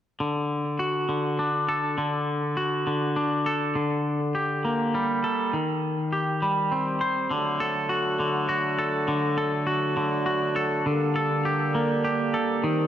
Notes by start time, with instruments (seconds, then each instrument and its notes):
0.20 clean electric guitar D3
0.79 clean electric guitar F#4
1.09 clean electric guitar D3
1.39 clean electric guitar D4
1.69 clean electric guitar A4
1.98 clean electric guitar D3
2.57 clean electric guitar F#4
2.87 clean electric guitar D3
3.16 clean electric guitar D4
3.46 clean electric guitar A4
3.75 clean electric guitar D3
4.35 clean electric guitar G4
4.65 clean electric guitar A#3
4.95 clean electric guitar G3
5.24 clean electric guitar A4
5.53 clean electric guitar D#3
6.13 clean electric guitar G4
6.42 clean electric guitar G3
6.72 clean electric guitar C4
7.01 clean electric guitar C5
7.29 clean electric guitar D3, harmonium F#3 A3 D4 A4
7.60 clean electric guitar A4
7.89 clean electric guitar F#4
8.20 clean electric guitar D3
8.49 clean electric guitar F#4
8.79 clean electric guitar A4
9.08 clean electric guitar D3
9.38 clean electric guitar A4
9.67 clean electric guitar F#4
9.97 clean electric guitar D3
10.26 clean electric guitar F#4
10.56 clean electric guitar A4
10.86 harmonium D3 G3 A#3, clean electric guitar D3
11.16 clean electric guitar A4
11.45 clean electric guitar G4
11.75 clean electric guitar A#3
12.04 clean electric guitar G4
12.34 clean electric guitar A4
12.63 harmonium D#3 C4 G4, clean electric guitar D#3